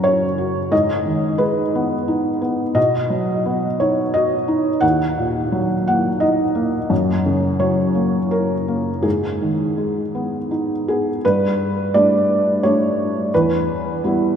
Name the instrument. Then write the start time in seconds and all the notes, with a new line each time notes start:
felt piano
Already playing: F#2 C#3 F#3 F#4 A#4
0.04 C#4 C#5
0.38 F#4
0.72 G#2 D#5
1.06 D#3
1.38 G#3 B4
1.75 B3
2.08 D#4
2.42 B3
2.75 B2 D#5
3.10 F#3
3.46 B3
3.80 D#4 C#5
4.14 F#4 D#5
4.48 D#4
4.81 D#2 F#5
5.17 A#2
5.52 F#3
5.88 A#3 F#5
6.20 D#4 D#5
6.55 A#3
6.90 F#2
7.26 C#3
7.59 F#3 C#5
7.95 A#3
8.31 C#4 A#4
8.68 A#3
9.03 G#2 G#4
9.42 D#3
9.78 G#3
10.15 B3
10.51 D#4
10.88 B3 G#4
11.25 G2 B4
11.94 G3 A3 D4 D5
12.63 G3 A3 D4 C#5
13.34 E2 B4
14.04 G3 B3 E4